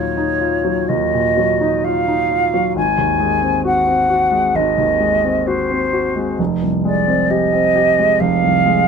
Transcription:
Already playing: grand piano D#2 A#2 F#3 D#4 F4, flute C#5
0.17 grand piano D#4
0.41 grand piano F4
0.64 grand piano F#3
0.88 grand piano D#2, flute D#5
1.14 grand piano A#2
1.37 grand piano F#3
1.61 grand piano D#4
1.84 grand piano F4, flute F5
2.08 grand piano D#4
2.31 grand piano F4
2.54 grand piano F#3
2.76 grand piano G#1, flute G#5
2.98 grand piano D#2
3.20 grand piano G#3
3.42 grand piano C4
3.65 grand piano F#4, flute F#5
3.87 grand piano C4
4.10 grand piano F#4
4.32 grand piano G#3
4.55 grand piano G#1, flute D#5
4.78 grand piano D#2
5.00 grand piano G#3
5.24 grand piano C4
5.47 grand piano F#4, flute C5
5.71 grand piano C4
5.93 grand piano F#4
6.16 grand piano G#3
6.39 grand piano F1
6.62 grand piano C2
6.85 grand piano G#3, flute D5
7.07 grand piano C4
7.30 grand piano G4, flute D#5
7.53 grand piano C4
7.76 grand piano G4
7.99 grand piano G#3
8.20 grand piano F1, flute F5
8.44 grand piano C2
8.66 grand piano G#3

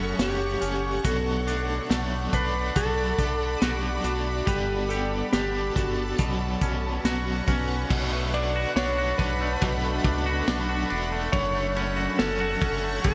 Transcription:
Already playing: analog synth bass F#1, overdriven electric guitar F#3 A3 C#4 F#4, clean electric guitar A3 C#4 F#4, electric slide guitar A4, ambient pad A4 C#5 F#5 C#6
0.19 analog synth bass F#1, overdriven electric guitar F#2 C#3 A3 C#4, electric slide guitar G4, snare, closed hi-hat
0.62 analog synth bass F#1, overdriven electric guitar A3 C#4, closed hi-hat
1.04 analog synth bass B1, overdriven electric guitar B2 F#3 A3 D4 A4, clean electric guitar F#4, electric slide guitar A4, ambient pad D5 B5, kick, closed hi-hat
1.46 overdriven electric guitar A3 D4 A4, closed hi-hat
1.89 analog synth bass B1, overdriven electric guitar B2 F#3 A3 D4 A4, snare, closed hi-hat
2.32 analog synth bass B1, overdriven electric guitar A3 D4 A4, electric slide guitar B4, kick, closed hi-hat
2.76 analog synth bass B1, overdriven electric guitar F#3 A3 D4 A4, clean electric guitar F#4, electric slide guitar A4, kick, closed hi-hat
3.18 analog synth bass B1, overdriven electric guitar A3 D4 A4, kick, closed hi-hat
3.61 analog synth bass B1, overdriven electric guitar B2 F#3 A3 D4 A4, clean electric guitar F#4, snare, closed hi-hat
3.67 electric slide guitar G4
4.04 analog synth bass B1, overdriven electric guitar A3 D4 A4, electric slide guitar F#4, closed hi-hat
4.46 analog synth bass G1, overdriven electric guitar G3 B3 D4 A4, electric slide guitar G4, ambient pad A4 A5, clean electric guitar B4, kick, closed hi-hat
4.89 overdriven electric guitar D4 A4, clean electric guitar G4, electric slide guitar A4, closed hi-hat
4.94 overdriven electric guitar B3
5.33 analog synth bass G1, overdriven electric guitar G3 B3 D4 A4, electric slide guitar G4, snare, closed hi-hat
5.75 analog synth bass G1, overdriven electric guitar B3 D4 A4, electric slide guitar F#4, kick, closed hi-hat
6.18 analog synth bass B1, clean electric guitar B2, overdriven electric guitar F#3 B3 C#4 F#4, ambient pad B4 C#5 F#5 C#6, kick, closed hi-hat
6.61 analog synth bass B1, overdriven electric guitar B3 C#4 F#4, kick, closed hi-hat
7.04 analog synth bass B1, overdriven electric guitar B2 F#3 B3 C#4 F#4, snare, closed hi-hat
7.46 analog synth bass B1, overdriven electric guitar B3 C#4 F#4, kick, closed hi-hat
7.90 analog synth bass B1, overdriven electric guitar B2 F#3 A3 D4 F#4, ambient pad D4 A4 F#5 B5, kick, crash
8.12 clean electric guitar A3
8.32 overdriven electric guitar A3 D4 F#4, electric slide guitar D5, ride
8.56 clean electric guitar F#4
8.75 analog synth bass B1, overdriven electric guitar B2 F#3 A3 D4 F#4, electric slide guitar C#5, snare, ride, tambourine
8.98 clean electric guitar F#4
9.18 analog synth bass B1, overdriven electric guitar A3 D4 F#4, electric slide guitar B4, kick, ride
9.41 clean electric guitar A3
9.61 analog synth bass B1, clean electric guitar B2, overdriven electric guitar F#3 A3 D4 F#4, kick, ride
9.84 clean electric guitar A3
10.03 analog synth bass C#2, overdriven electric guitar A3 D4 F#4, kick, ride
10.26 clean electric guitar F#4
10.47 analog synth bass B1, overdriven electric guitar B2 F#3 A3 D4 F#4, snare, ride, tambourine
10.69 clean electric guitar F#4
10.90 analog synth bass E1, overdriven electric guitar A3 D4 F#4, ride
11.12 clean electric guitar A3
11.32 analog synth bass F#1, overdriven electric guitar F#2 C#3 F#3 A3 C#4 F#4, electric slide guitar C#5, ambient pad C#5 C#6, kick, ride
11.55 clean electric guitar A3
11.75 overdriven electric guitar F#3 A3 C#4 F#4, ride
11.97 clean electric guitar F#4
12.18 analog synth bass F#1, overdriven electric guitar F#2 C#3 F#3 A3 C#4 F#4, electric slide guitar A4, snare, ride, tambourine
12.40 clean electric guitar F#4
12.61 analog synth bass F#1, overdriven electric guitar F#3 A3 C#4 F#4, kick, ride
12.83 clean electric guitar A3
13.03 analog synth bass F#1, clean electric guitar F#2, overdriven electric guitar F#3 A3 C#4 F#4, electric slide guitar A4, kick, ride

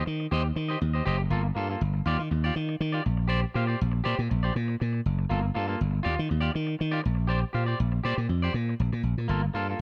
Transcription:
0.05 slap bass D#3, muted clean electric guitar stroke
0.20 muted clean electric guitar stroke
0.31 slap bass D#2, clean electric guitar G4 C5 D#5
0.45 muted clean electric guitar stroke
0.56 slap bass D#3, muted clean electric guitar stroke
0.68 clean electric guitar G4 C5 D#5
0.81 slap bass D#2, muted clean electric guitar stroke
0.94 clean electric guitar G4 C5 D#5
1.06 slap bass F#1, clean electric guitar G4 C5 D#5
1.19 muted clean electric guitar stroke
1.30 slap bass G1, clean electric guitar A#3 F4 A4
1.44 muted clean electric guitar stroke
1.55 slap bass G2, clean electric guitar A#3 F4 A4
1.70 clean electric guitar A#3 F4 A4
1.81 slap bass G1
1.94 muted clean electric guitar stroke
2.06 slap bass D#2, clean electric guitar F4 G4 D5
2.19 slap bass D#3, muted clean electric guitar stroke
2.31 slap bass D#2, muted clean electric guitar stroke
2.44 clean electric guitar F4 G4 D5
2.56 slap bass D#3, muted clean electric guitar stroke
2.69 muted clean electric guitar stroke
2.80 slap bass D#3, muted clean electric guitar stroke
2.92 clean electric guitar F4 G4 D5
3.05 slap bass A#1, muted clean electric guitar stroke
3.17 muted clean electric guitar stroke
3.28 clean electric guitar G4 C5 D5
3.43 muted clean electric guitar stroke
3.54 slap bass A#2, clean electric guitar G4 C5 F5
3.67 clean electric guitar G4 C5 D5
3.81 slap bass A#1
3.92 muted clean electric guitar stroke
4.04 slap bass A#2, clean electric guitar G4 C5 D5
4.18 slap bass A#2, muted clean electric guitar stroke
4.29 slap bass A#1, muted clean electric guitar stroke
4.43 clean electric guitar G4 C5 D5
4.55 slap bass A#2, muted clean electric guitar stroke
4.68 muted clean electric guitar stroke
4.80 slap bass A#2, muted clean electric guitar stroke
4.93 muted clean electric guitar stroke
5.06 slap bass F#1
5.19 muted clean electric guitar stroke
5.30 slap bass G1, clean electric guitar A#3 F4 A4
5.42 muted clean electric guitar stroke
5.55 slap bass G2, clean electric guitar A#3 F4 A4
5.68 clean electric guitar A#3 F4 A4
5.81 slap bass G1
5.91 muted clean electric guitar stroke
6.03 slap bass D#2, clean electric guitar F4 G4 D5
6.17 slap bass D#3, muted clean electric guitar stroke
6.29 slap bass D#2, muted clean electric guitar stroke
6.41 clean electric guitar F4 G4 D5
6.53 slap bass D#3, muted clean electric guitar stroke
6.67 muted clean electric guitar stroke
6.79 slap bass D#3, muted clean electric guitar stroke
6.91 clean electric guitar F4 G4 D5
7.03 slap bass A#1, muted clean electric guitar stroke
7.15 muted clean electric guitar stroke
7.27 clean electric guitar G4 C5 D5
7.42 muted clean electric guitar stroke
7.53 slap bass A#2, clean electric guitar G4 C5 F5
7.66 clean electric guitar G4 C5 D5
7.80 slap bass A#1
7.92 muted clean electric guitar stroke
8.04 slap bass A#2, clean electric guitar G4 C5 D5
8.17 slap bass A#2, muted clean electric guitar stroke
8.29 slap bass F2, muted clean electric guitar stroke
8.42 clean electric guitar G4 C5 D5
8.54 slap bass A#2, muted clean electric guitar stroke
8.69 muted clean electric guitar stroke
8.80 slap bass A#1, muted clean electric guitar stroke
8.93 slap bass A#2, muted clean electric guitar stroke
9.03 slap bass A#1
9.18 slap bass A#2, muted clean electric guitar stroke
9.28 slap bass G1, clean electric guitar A#3 F4 A4
9.44 muted clean electric guitar stroke
9.54 slap bass G2, clean electric guitar A#3 F4 A4
9.70 clean electric guitar A#3 F4 A4

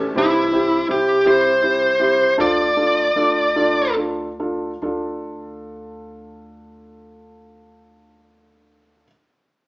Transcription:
Already playing: upright bass A#1, steel-string acoustic guitar E3 A3 C#4 G4, string section G4 C#5 A5
0.15 upright bass C2, felt piano C4 E4 G4, lead electric guitar E4
0.52 felt piano C4 E4 G4
0.88 upright bass C2, felt piano C4 E4 G4, lead electric guitar G4
1.25 felt piano C4 E4 G4, lead electric guitar C5
1.62 felt piano C4 E4 G4
1.99 felt piano C4 E4 G4
2.38 upright bass D2, felt piano D4 F4 A4, lead electric guitar D5
2.77 felt piano D4 F4 A4
3.15 upright bass D2, felt piano D4 F4 A4
3.56 felt piano D4 F4 A4
3.96 felt piano D4 F4 A4
4.40 felt piano D4 F4 A4
4.82 upright bass D2, felt piano D4 F4 A4

